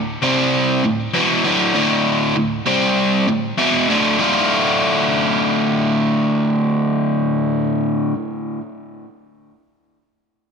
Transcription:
0, 0, Header, 1, 2, 480
1, 0, Start_track
1, 0, Key_signature, -1, "minor"
1, 0, Tempo, 610998
1, 1370, Time_signature, 4, 2, 24, 8
1, 8261, End_track
2, 0, Start_track
2, 0, Title_t, "Overdriven electric guitar"
2, 0, Program_c, 0, 29
2, 0, Note_on_c, 0, 38, 75
2, 0, Note_on_c, 0, 45, 82
2, 128, Note_off_c, 0, 38, 0
2, 130, Note_off_c, 0, 45, 0
2, 173, Note_on_c, 0, 48, 89
2, 179, Note_on_c, 0, 55, 98
2, 180, Note_on_c, 0, 60, 111
2, 645, Note_off_c, 0, 48, 0
2, 647, Note_off_c, 0, 55, 0
2, 648, Note_off_c, 0, 60, 0
2, 657, Note_on_c, 0, 38, 75
2, 661, Note_on_c, 0, 45, 76
2, 846, Note_off_c, 0, 38, 0
2, 848, Note_off_c, 0, 45, 0
2, 891, Note_on_c, 0, 40, 89
2, 897, Note_on_c, 0, 47, 99
2, 900, Note_on_c, 0, 52, 109
2, 1124, Note_off_c, 0, 40, 0
2, 1126, Note_off_c, 0, 47, 0
2, 1128, Note_off_c, 0, 52, 0
2, 1128, Note_on_c, 0, 38, 106
2, 1133, Note_on_c, 0, 45, 108
2, 1139, Note_on_c, 0, 50, 117
2, 1357, Note_off_c, 0, 38, 0
2, 1364, Note_off_c, 0, 45, 0
2, 1366, Note_on_c, 0, 38, 104
2, 1367, Note_off_c, 0, 50, 0
2, 1374, Note_on_c, 0, 45, 104
2, 1377, Note_on_c, 0, 50, 107
2, 1840, Note_off_c, 0, 38, 0
2, 1844, Note_off_c, 0, 45, 0
2, 1845, Note_off_c, 0, 50, 0
2, 1853, Note_on_c, 0, 38, 78
2, 1854, Note_on_c, 0, 45, 75
2, 2043, Note_off_c, 0, 38, 0
2, 2044, Note_off_c, 0, 45, 0
2, 2093, Note_on_c, 0, 48, 98
2, 2097, Note_on_c, 0, 55, 91
2, 2100, Note_on_c, 0, 60, 112
2, 2563, Note_off_c, 0, 48, 0
2, 2565, Note_off_c, 0, 55, 0
2, 2567, Note_off_c, 0, 60, 0
2, 2574, Note_on_c, 0, 38, 68
2, 2578, Note_on_c, 0, 45, 72
2, 2764, Note_off_c, 0, 38, 0
2, 2766, Note_off_c, 0, 45, 0
2, 2808, Note_on_c, 0, 40, 85
2, 2814, Note_on_c, 0, 47, 98
2, 2816, Note_on_c, 0, 52, 107
2, 3041, Note_off_c, 0, 40, 0
2, 3044, Note_off_c, 0, 47, 0
2, 3045, Note_off_c, 0, 52, 0
2, 3053, Note_on_c, 0, 38, 97
2, 3060, Note_on_c, 0, 45, 99
2, 3065, Note_on_c, 0, 50, 105
2, 3274, Note_off_c, 0, 38, 0
2, 3283, Note_on_c, 0, 38, 103
2, 3285, Note_off_c, 0, 45, 0
2, 3289, Note_off_c, 0, 50, 0
2, 3295, Note_on_c, 0, 45, 108
2, 3302, Note_on_c, 0, 50, 113
2, 3307, Note_on_c, 0, 57, 116
2, 3316, Note_on_c, 0, 65, 109
2, 6387, Note_off_c, 0, 38, 0
2, 6392, Note_off_c, 0, 45, 0
2, 6396, Note_off_c, 0, 50, 0
2, 6398, Note_off_c, 0, 57, 0
2, 6403, Note_off_c, 0, 65, 0
2, 8261, End_track
0, 0, End_of_file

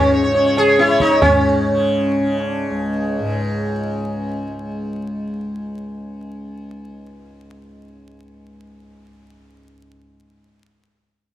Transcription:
0, 0, Header, 1, 4, 480
1, 0, Start_track
1, 0, Tempo, 430725
1, 1357, Time_signature, 5, 2, 24, 8
1, 12638, End_track
2, 0, Start_track
2, 0, Title_t, "Sitar"
2, 0, Program_c, 0, 104
2, 0, Note_on_c, 0, 61, 77
2, 125, Note_off_c, 0, 61, 0
2, 142, Note_on_c, 0, 73, 42
2, 243, Note_off_c, 0, 73, 0
2, 256, Note_on_c, 0, 73, 41
2, 371, Note_off_c, 0, 73, 0
2, 385, Note_on_c, 0, 73, 42
2, 501, Note_off_c, 0, 73, 0
2, 515, Note_on_c, 0, 73, 44
2, 646, Note_on_c, 0, 68, 114
2, 738, Note_off_c, 0, 73, 0
2, 756, Note_on_c, 0, 73, 43
2, 882, Note_on_c, 0, 64, 93
2, 888, Note_off_c, 0, 68, 0
2, 979, Note_off_c, 0, 73, 0
2, 995, Note_on_c, 0, 73, 45
2, 1103, Note_off_c, 0, 64, 0
2, 1126, Note_on_c, 0, 63, 98
2, 1220, Note_off_c, 0, 73, 0
2, 1243, Note_on_c, 0, 73, 43
2, 1356, Note_off_c, 0, 63, 0
2, 1360, Note_on_c, 0, 61, 86
2, 1464, Note_off_c, 0, 73, 0
2, 2697, Note_off_c, 0, 61, 0
2, 2697, Note_on_c, 0, 62, 86
2, 3065, Note_off_c, 0, 62, 0
2, 3065, Note_on_c, 0, 61, 86
2, 3455, Note_off_c, 0, 61, 0
2, 3455, Note_on_c, 0, 62, 86
2, 3823, Note_off_c, 0, 62, 0
2, 3823, Note_on_c, 0, 61, 86
2, 5154, Note_off_c, 0, 61, 0
2, 12638, End_track
3, 0, Start_track
3, 0, Title_t, "Tanpura"
3, 0, Program_c, 1, 104
3, 0, Note_on_c, 1, 37, 75
3, 0, Note_on_c, 1, 44, 75
3, 0, Note_on_c, 1, 49, 70
3, 310, Note_off_c, 1, 49, 0
3, 310, Note_on_c, 1, 49, 69
3, 882, Note_off_c, 1, 49, 0
3, 882, Note_on_c, 1, 49, 68
3, 1348, Note_off_c, 1, 44, 0
3, 1348, Note_on_c, 1, 44, 67
3, 1897, Note_off_c, 1, 49, 0
3, 1897, Note_on_c, 1, 49, 70
3, 2453, Note_off_c, 1, 49, 0
3, 2453, Note_on_c, 1, 49, 63
3, 3004, Note_off_c, 1, 37, 0
3, 3009, Note_on_c, 1, 37, 67
3, 3558, Note_off_c, 1, 44, 0
3, 3558, Note_on_c, 1, 44, 65
3, 10421, Note_off_c, 1, 49, 0
3, 10977, Note_off_c, 1, 37, 0
3, 11526, Note_off_c, 1, 44, 0
3, 12638, End_track
4, 0, Start_track
4, 0, Title_t, "Tabla"
4, 637, Note_on_c, 9, 60, 88
4, 749, Note_off_c, 9, 60, 0
4, 879, Note_on_c, 9, 62, 87
4, 990, Note_off_c, 9, 62, 0
4, 1116, Note_on_c, 9, 37, 85
4, 1227, Note_off_c, 9, 37, 0
4, 1359, Note_on_c, 9, 60, 122
4, 1359, Note_on_c, 9, 64, 117
4, 1471, Note_off_c, 9, 60, 0
4, 1471, Note_off_c, 9, 64, 0
4, 12638, End_track
0, 0, End_of_file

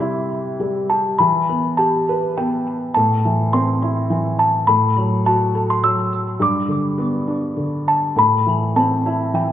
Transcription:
0, 0, Header, 1, 3, 480
1, 0, Start_track
1, 0, Tempo, 594059
1, 955, Time_signature, 3, 2, 24, 8
1, 1910, Tempo, 575816
1, 5750, Tempo, 592300
1, 7819, End_track
2, 0, Start_track
2, 0, Title_t, "Music box"
2, 0, Program_c, 0, 10
2, 0, Note_on_c, 0, 84, 71
2, 442, Note_off_c, 0, 84, 0
2, 724, Note_on_c, 0, 81, 61
2, 958, Note_on_c, 0, 83, 74
2, 967, Note_off_c, 0, 81, 0
2, 1433, Note_on_c, 0, 81, 66
2, 1449, Note_off_c, 0, 83, 0
2, 1920, Note_on_c, 0, 79, 65
2, 1924, Note_off_c, 0, 81, 0
2, 2368, Note_off_c, 0, 79, 0
2, 2394, Note_on_c, 0, 81, 82
2, 2884, Note_on_c, 0, 84, 86
2, 2894, Note_off_c, 0, 81, 0
2, 3600, Note_on_c, 0, 81, 83
2, 3619, Note_off_c, 0, 84, 0
2, 3819, Note_off_c, 0, 81, 0
2, 3834, Note_on_c, 0, 83, 87
2, 4281, Note_off_c, 0, 83, 0
2, 4327, Note_on_c, 0, 81, 78
2, 4655, Note_off_c, 0, 81, 0
2, 4693, Note_on_c, 0, 84, 85
2, 4804, Note_off_c, 0, 84, 0
2, 4805, Note_on_c, 0, 88, 91
2, 5288, Note_off_c, 0, 88, 0
2, 5292, Note_on_c, 0, 86, 89
2, 6209, Note_off_c, 0, 86, 0
2, 6487, Note_on_c, 0, 81, 73
2, 6727, Note_off_c, 0, 81, 0
2, 6735, Note_on_c, 0, 83, 86
2, 7203, Note_on_c, 0, 81, 71
2, 7219, Note_off_c, 0, 83, 0
2, 7644, Note_off_c, 0, 81, 0
2, 7677, Note_on_c, 0, 79, 72
2, 7819, Note_off_c, 0, 79, 0
2, 7819, End_track
3, 0, Start_track
3, 0, Title_t, "Felt piano"
3, 0, Program_c, 1, 0
3, 0, Control_c, 1, 64, 127
3, 0, Note_on_c, 1, 48, 65
3, 0, Note_on_c, 1, 55, 48
3, 1, Note_on_c, 1, 64, 53
3, 470, Note_off_c, 1, 55, 0
3, 482, Note_on_c, 1, 55, 42
3, 728, Note_on_c, 1, 67, 44
3, 927, Note_off_c, 1, 48, 0
3, 932, Note_off_c, 1, 64, 0
3, 946, Note_off_c, 1, 55, 0
3, 955, Note_off_c, 1, 67, 0
3, 965, Control_c, 1, 64, 0
3, 969, Note_on_c, 1, 52, 62
3, 1126, Control_c, 1, 64, 127
3, 1205, Note_on_c, 1, 59, 48
3, 1441, Note_on_c, 1, 67, 47
3, 1689, Note_on_c, 1, 71, 55
3, 1909, Note_off_c, 1, 59, 0
3, 1921, Note_on_c, 1, 59, 50
3, 2370, Note_off_c, 1, 52, 0
3, 2371, Note_off_c, 1, 67, 0
3, 2383, Note_off_c, 1, 71, 0
3, 2387, Note_off_c, 1, 59, 0
3, 2407, Control_c, 1, 64, 0
3, 2408, Note_on_c, 1, 45, 61
3, 2528, Control_c, 1, 64, 127
3, 2651, Note_on_c, 1, 52, 51
3, 2886, Note_on_c, 1, 60, 52
3, 3125, Note_on_c, 1, 64, 48
3, 3345, Note_off_c, 1, 52, 0
3, 3358, Note_on_c, 1, 52, 52
3, 3807, Note_off_c, 1, 45, 0
3, 3808, Note_off_c, 1, 60, 0
3, 3814, Note_off_c, 1, 64, 0
3, 3819, Note_off_c, 1, 52, 0
3, 3838, Note_on_c, 1, 45, 69
3, 3846, Control_c, 1, 64, 0
3, 3989, Control_c, 1, 64, 127
3, 4079, Note_on_c, 1, 54, 52
3, 4322, Note_on_c, 1, 66, 57
3, 4565, Note_on_c, 1, 69, 49
3, 4785, Note_off_c, 1, 54, 0
3, 4798, Note_on_c, 1, 54, 47
3, 5236, Note_off_c, 1, 45, 0
3, 5243, Note_off_c, 1, 66, 0
3, 5251, Note_off_c, 1, 69, 0
3, 5256, Note_off_c, 1, 54, 0
3, 5271, Note_on_c, 1, 43, 66
3, 5277, Control_c, 1, 64, 0
3, 5419, Control_c, 1, 64, 127
3, 5509, Note_on_c, 1, 50, 49
3, 5756, Note_on_c, 1, 59, 55
3, 5995, Note_on_c, 1, 62, 43
3, 6220, Note_off_c, 1, 50, 0
3, 6233, Note_on_c, 1, 50, 46
3, 6683, Note_off_c, 1, 43, 0
3, 6688, Note_off_c, 1, 59, 0
3, 6696, Note_off_c, 1, 62, 0
3, 6700, Note_off_c, 1, 50, 0
3, 6713, Note_on_c, 1, 45, 66
3, 6722, Control_c, 1, 64, 0
3, 6864, Control_c, 1, 64, 127
3, 6961, Note_on_c, 1, 52, 47
3, 7199, Note_on_c, 1, 60, 55
3, 7441, Note_on_c, 1, 64, 49
3, 7656, Note_off_c, 1, 52, 0
3, 7668, Note_on_c, 1, 52, 51
3, 7819, Note_off_c, 1, 45, 0
3, 7819, Note_off_c, 1, 52, 0
3, 7819, Note_off_c, 1, 60, 0
3, 7819, Note_off_c, 1, 64, 0
3, 7819, End_track
0, 0, End_of_file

